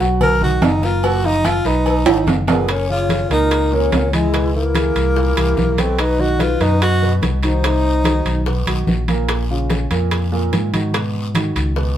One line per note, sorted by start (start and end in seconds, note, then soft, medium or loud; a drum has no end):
0.00 0.58 B1 medium
0.00 0.34 F#3 medium
0.00 0.34 F#4 medium
0.00 0.34 F#5 medium
0.00 cowbell medium
0.00 high conga soft
0.00 short guiro medium
0.21 0.41 A#4 loud
0.21 cowbell loud
0.21 high conga soft
0.21 low conga loud
0.21 low agogo loud
0.21 long guiro medium
0.41 0.75 D#3 medium
0.41 0.75 D#4 medium
0.41 0.66 F#4 loud
0.41 0.76 D#5 medium
0.41 high conga soft
0.41 low conga medium
0.62 1.59 F#1 medium
0.62 0.84 D#4 medium
0.62 cowbell medium
0.62 high conga medium
0.62 low timbale loud
0.62 low agogo medium
0.62 short guiro medium
0.82 0.99 A#3 medium
0.82 1.07 F4 loud
0.82 0.99 A#4 medium
0.82 1.00 A#5 medium
0.82 cowbell medium
0.82 high conga soft
0.82 short guiro medium
1.03 1.20 A#2 medium
1.03 1.21 A#3 medium
1.03 1.27 F#4 loud
1.03 1.21 A#4 medium
1.03 cowbell loud
1.03 high conga soft
1.03 low agogo loud
1.03 long guiro medium
1.24 1.58 F3 medium
1.24 1.48 D#4 loud
1.24 1.58 F4 medium
1.24 1.58 F5 medium
1.24 high conga soft
1.44 1.69 F4 loud
1.44 cowbell medium
1.44 high conga medium
1.44 low timbale medium
1.44 low agogo loud
1.44 short guiro medium
1.65 2.04 B1 loud
1.65 1.99 B3 medium
1.65 2.28 D#4 loud
1.65 1.99 B4 medium
1.65 2.00 B5 medium
1.65 cowbell medium
1.65 high conga soft
1.65 short guiro medium
1.86 cowbell loud
1.86 high conga soft
1.86 low agogo medium
1.86 long guiro medium
2.06 2.26 G#1 medium
2.06 2.40 D#3 medium
2.06 2.41 D#4 medium
2.06 2.41 D#5 medium
2.06 high conga soft
2.06 high timbale loud
2.06 low agogo loud
2.27 3.24 F#1 medium
2.27 cowbell medium
2.27 high conga medium
2.27 low timbale medium
2.27 short guiro medium
2.47 2.65 A#2 loud
2.47 2.65 A#3 medium
2.47 2.73 B3 medium
2.47 2.70 G#4 medium
2.47 2.65 A#4 medium
2.47 cowbell medium
2.47 high conga medium
2.47 low timbale loud
2.47 low agogo medium
2.47 short guiro medium
2.68 2.90 C#4 medium
2.68 2.89 A#4 medium
2.68 high bongo medium
2.68 high conga soft
2.68 high timbale medium
2.68 long guiro medium
2.89 3.23 C#3 medium
2.89 3.23 C#4 medium
2.89 3.23 F4 medium
2.89 3.29 F4 medium
2.89 3.28 C#5 medium
2.89 high conga soft
3.09 high bongo medium
3.09 high conga medium
3.09 high timbale medium
3.09 short guiro medium
3.30 3.88 C#2 medium
3.30 3.64 A#2 medium
3.30 3.64 A#3 medium
3.30 3.76 D#4 loud
3.30 3.72 A#4 medium
3.30 3.65 A#4 medium
3.30 high bongo soft
3.30 high conga soft
3.30 high timbale medium
3.30 short guiro medium
3.51 high bongo medium
3.51 high conga soft
3.51 high timbale medium
3.51 long guiro medium
3.71 4.06 A#2 medium
3.71 4.06 A#3 medium
3.71 4.14 C#4 medium
3.71 4.12 A#4 medium
3.71 4.06 A#4 medium
3.71 high bongo soft
3.71 high conga soft
3.92 4.90 C#2 medium
3.92 high bongo soft
3.92 low bongo medium
3.92 high conga medium
3.92 high timbale medium
3.92 low timbale medium
3.92 short guiro medium
4.13 4.30 E3 medium
4.13 4.52 G#3 medium
4.13 4.51 E4 medium
4.13 4.30 E4 medium
4.13 4.30 G#4 medium
4.13 high bongo soft
4.13 high conga medium
4.13 high timbale medium
4.13 short guiro medium
4.33 4.68 B2 medium
4.33 4.68 B3 medium
4.33 4.68 B4 medium
4.33 high bongo medium
4.33 high conga soft
4.33 high timbale medium
4.33 long guiro medium
4.54 5.81 A#3 loud
4.54 5.80 E4 medium
4.54 high conga soft
4.75 5.09 E3 medium
4.75 5.09 E4 medium
4.75 5.09 G#4 medium
4.75 high bongo medium
4.75 high conga medium
4.75 high timbale loud
4.75 short guiro medium
4.95 5.34 C2 medium
4.95 high bongo soft
4.95 high conga soft
4.95 high timbale medium
4.95 short guiro medium
5.16 5.33 A#2 medium
5.16 5.33 A#3 medium
5.16 5.33 A#4 medium
5.16 high bongo medium
5.16 high conga soft
5.16 long guiro medium
5.37 5.56 C2 medium
5.37 5.71 E3 medium
5.37 5.71 E4 medium
5.37 5.71 G4 medium
5.37 high bongo soft
5.37 high conga soft
5.37 high timbale medium
5.57 6.55 B1 medium
5.57 high bongo soft
5.57 low bongo medium
5.57 high conga medium
5.57 short guiro medium
5.78 6.12 B2 medium
5.78 6.12 B3 medium
5.78 6.02 C4 medium
5.78 6.01 A4 medium
5.78 6.12 B4 medium
5.78 high bongo soft
5.78 high conga medium
5.78 high timbale medium
5.78 short guiro medium
5.99 6.22 D#4 medium
5.99 6.21 B4 medium
5.99 high bongo medium
5.99 high conga soft
5.99 high timbale medium
5.99 long guiro medium
6.19 6.53 D#3 medium
6.19 6.53 D#4 medium
6.19 6.54 F#4 medium
6.19 6.43 F#4 loud
6.19 6.41 D#5 medium
6.19 high conga soft
6.39 6.63 F4 loud
6.39 6.61 B4 medium
6.39 high bongo medium
6.39 high conga medium
6.39 high timbale medium
6.39 short guiro medium
6.60 7.18 F#2 medium
6.60 6.94 B2 medium
6.60 6.94 B3 medium
6.60 6.82 D#4 loud
6.60 6.94 B4 medium
6.60 6.81 B4 medium
6.60 high bongo soft
6.60 high conga soft
6.60 high timbale medium
6.60 short guiro medium
6.81 7.15 F#4 loud
6.81 7.14 D#5 medium
6.81 high bongo medium
6.81 high conga soft
6.81 high timbale loud
6.81 long guiro medium
7.01 7.36 B2 medium
7.01 7.36 B3 medium
7.01 7.36 B4 medium
7.01 high bongo soft
7.01 high conga soft
7.22 8.20 C2 medium
7.22 high bongo soft
7.22 low bongo medium
7.22 high conga medium
7.22 high timbale medium
7.22 short guiro medium
7.43 7.60 D#3 medium
7.43 7.60 D#4 medium
7.43 8.64 D#4 loud
7.43 7.60 F#4 medium
7.43 8.42 C5 medium
7.43 high bongo soft
7.43 high timbale medium
7.43 short guiro medium
7.63 7.98 C3 medium
7.63 7.98 C4 medium
7.63 7.98 C5 medium
7.63 high bongo medium
7.63 high conga soft
7.63 high timbale loud
7.63 long guiro medium
7.84 high conga soft
8.04 8.39 D#3 medium
8.04 8.39 D#4 medium
8.04 8.39 F#4 medium
8.04 high bongo medium
8.04 high conga medium
8.04 high timbale medium
8.04 short guiro medium
8.25 8.64 B1 medium
8.25 high bongo soft
8.25 high conga soft
8.25 high timbale medium
8.25 short guiro medium
8.46 8.63 B2 medium
8.46 8.64 B3 medium
8.46 8.64 B4 medium
8.46 high bongo medium
8.46 high conga soft
8.46 long guiro medium
8.67 8.86 B1 medium
8.67 9.01 D#3 medium
8.67 9.01 D#4 medium
8.67 9.01 F#4 medium
8.67 high bongo soft
8.67 high conga soft
8.67 high timbale medium
8.87 9.85 A#1 medium
8.87 high bongo soft
8.87 low bongo medium
8.87 high conga medium
8.87 short guiro medium
9.08 9.42 A#2 medium
9.08 9.42 A#3 medium
9.08 9.43 A#4 medium
9.08 high bongo soft
9.08 high conga medium
9.08 high timbale medium
9.08 short guiro medium
9.28 high bongo medium
9.28 high conga soft
9.28 high timbale loud
9.28 long guiro medium
9.50 9.84 C#3 medium
9.50 9.84 C#4 medium
9.50 9.84 F4 medium
9.50 high conga soft
9.70 high bongo medium
9.70 high conga medium
9.70 high timbale medium
9.70 short guiro medium
9.91 10.49 F2 medium
9.91 10.25 A#2 medium
9.91 10.25 A#3 medium
9.91 10.25 A#4 medium
9.91 high bongo soft
9.91 high conga soft
9.91 high timbale medium
9.91 short guiro medium
10.11 high bongo medium
10.11 high conga soft
10.11 high timbale medium
10.11 long guiro medium
10.32 10.66 A#2 medium
10.32 10.66 A#3 medium
10.32 10.66 A#4 medium
10.32 high bongo soft
10.32 high conga soft
10.53 11.50 G#2 medium
10.53 high bongo soft
10.53 low bongo medium
10.53 high conga medium
10.53 high timbale medium
10.53 short guiro medium
10.73 10.90 D#3 medium
10.73 10.91 D#4 medium
10.73 10.91 F#4 medium
10.73 high bongo soft
10.73 high conga medium
10.73 high timbale medium
10.73 short guiro medium
10.94 11.28 B2 medium
10.94 11.28 B3 medium
10.94 11.28 B4 medium
10.94 high bongo medium
10.94 high conga soft
10.94 high timbale medium
10.94 long guiro medium
11.15 high conga soft
11.35 11.69 D#3 medium
11.35 11.70 D#4 medium
11.35 11.70 F#4 medium
11.35 high bongo medium
11.35 high conga medium
11.35 high timbale medium
11.35 short guiro medium
11.56 11.94 C#2 medium
11.56 high bongo soft
11.56 high conga soft
11.56 high timbale medium
11.56 short guiro medium
11.76 11.93 B2 medium
11.76 11.94 B3 medium
11.76 11.94 B4 medium
11.76 high bongo medium
11.76 high conga soft
11.76 long guiro medium